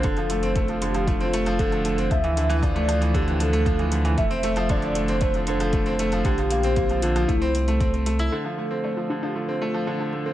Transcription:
<<
  \new Staff \with { instrumentName = "Soft synth lead" } { \time 4/4 \key f \major \tempo 4 = 116 a'4. g'8 f'4 a'8. r16 | e''4 d''4 g'8 a'4 r8 | e''4 d''4 c''8 a'4 r8 | g'4. f'8 e'4 r4 |
a'4. g'8 f'4 a'8. r16 | }
  \new Staff \with { instrumentName = "Synth arpeggio sound" } { \time 4/4 \key f \major r1 | r1 | r1 | r1 |
d'16 d'16 r16 a'16 d''16 f'16 d'16 d'16 r16 a'16 d''16 f'16 d'16 d'16 r16 a'16 | }
  \new Staff \with { instrumentName = "Grand piano" } { \clef bass \time 4/4 \key f \major d16 f16 a16 c'16 a16 f16 d16 f16 a16 c'16 a16 f16 d16 f16 a16 c'16 | f16 e16 d16 e16 f16 a16 f16 e16 d16 e16 f16 a16 f16 e16 d16 e16 | a16 c'16 a16 f16 d16 f16 a16 c'16 a16 f16 d16 f16 a16 c'16 a16 f16 | d16 f16 bes16 c'16 bes16 f16 d16 f16 a16 c'16 c'16 a16 c'16 c'16 a16 e'16 |
d16 f16 a16 c'16 a16 f16 d16 f16 a16 c'16 a16 f16 d16 f16 a16 c'16 | }
  \new Staff \with { instrumentName = "Sub bass" } { \clef bass \time 4/4 \key f \major f,,1 | d,1 | f,,1 | bes,,2 c,2 |
r1 | }
  \new DrumStaff \with { instrumentName = "Drums" } \drummode { \time 4/4 <hh bd>16 hh16 hh16 hh16 <hh bd>16 hh16 hh16 hh16 <hh bd>16 hh16 hh16 hh16 <hh bd>16 hh16 hh16 hh16 | <hh bd>16 hh16 hh16 hh16 <hh bd>16 hh16 hh16 hh16 <hh bd>16 hh16 hh16 hh16 <hh bd>16 hh16 hh16 hh16 | <hh bd>16 hh16 hh16 hh16 <hh bd>16 hh16 hh16 hh16 <hh bd>16 hh16 hh16 hh16 <hh bd>16 hh16 hh16 hh16 | <hh bd>16 hh16 hh16 hh16 <hh bd>16 hh16 hh16 hh16 <hh bd>16 hh16 hh16 hh16 <hh bd>16 hh16 hh16 hh16 |
r4 r4 r4 r4 | }
>>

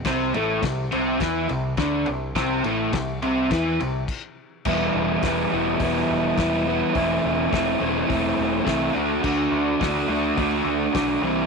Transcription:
<<
  \new Staff \with { instrumentName = "Overdriven electric guitar" } { \time 4/4 \key a \dorian \tempo 4 = 105 <c c'>8 <a, a>8 c8 <c c'>8 <e e'>8 c8 <d d'>8 c8 | <c c'>8 <a, a>8 c8 <c c'>8 <e e'>8 c8 r4 | <e g b e'>4 <e g b e'>8 <e g b e'>8 <e g b e'>4 <e g b e'>8 <e g b e'>8 | <e a c' e'>4 <e a c' e'>8 <e a c' e'>8 <e a c' e'>4 <e a c' e'>8 <d a d' fis'>8 |
<d a d' fis'>4 <d a d' fis'>8 <d a d' fis'>8 <d a d' fis'>4 <d a d' fis'>8 <c e g c' e'>8 | }
  \new Staff \with { instrumentName = "Picked electric bass" } { \clef bass \time 4/4 \key a \dorian c,8 a,,8 c,8 c,8 e,8 c,8 d,8 c,8 | c,8 a,,8 c,8 c,8 e,8 c,8 r4 | e,,8 e,,8 e,,8 e,,8 e,,8 e,,8 e,,4 | e,,8 e,,8 e,,8 e,,8 e,,8 e,,8 c,8 d,8 |
d,8 d,8 d,8 d,8 d,8 d,8 b,,8 c,8 | }
  \new DrumStaff \with { instrumentName = "Drums" } \drummode { \time 4/4 <cymc bd sn>8 cymr8 <bd cymr sn>8 cymr8 <bd cymr sn>8 cymr8 <bd cymr sn>8 cymr8 | <bd cymr sn>8 cymr8 <bd cymr sn>8 cymr8 <bd cymr sn>8 cymr8 <cymc bd>4 | <cymc bd>4 <hho bd sn>4 <hho bd>4 <hho bd sn>4 | <hho bd>4 <hho bd sn>4 <hho bd>4 <hho bd sn>4 |
<cymc bd>4 <hho bd sn>4 <hho bd>4 <hho bd sn>4 | }
>>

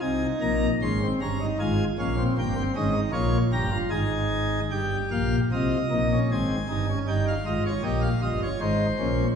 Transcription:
<<
  \new Staff \with { instrumentName = "Pipe organ" } { \time 3/4 \key aes \major \tempo 4 = 77 << { aes''8 bes''8 c'''8 bes''8 aes''8 f''8 | g''8 ees''8 des''8 bes''8 aes''4 | g''8 f''8 ees''4 aes''4 | g''16 f''16 ees''16 des''16 ees''16 f''16 ees''16 des''16 c''4 | } \\ { ees'4 des'16 c'16 des'16 ees'16 f'8 des'16 c'16 | bes16 c'16 des'16 ees'16 f'8 g'16 f'16 ees'4 | g'4 f'8 ees'16 des'16 c'8 ees'16 des'16 | ees'8 f'8 g'8 f'8 ees'8 des'8 | } >> }
  \new Staff \with { instrumentName = "Pipe organ" } { \clef bass \time 3/4 \key aes \major <c, c>8 <bes,, bes,>8 <aes,, aes,>8 <g,, g,>8 <aes,, aes,>8 <bes,, bes,>8 | <g,, g,>8 <aes,, aes,>8 <bes,, bes,>8 <g,, g,>8 <aes,, aes,>4 | <g,, g,>8 <bes,, bes,>8 <c, c>8 <bes,, bes,>8 <aes,, aes,>8 <g,, g,>8 | <g,, g,>8 <aes,, aes,>8 <bes,, bes,>8 <g,, g,>8 <aes,, aes,>8 <bes,, bes,>8 | }
>>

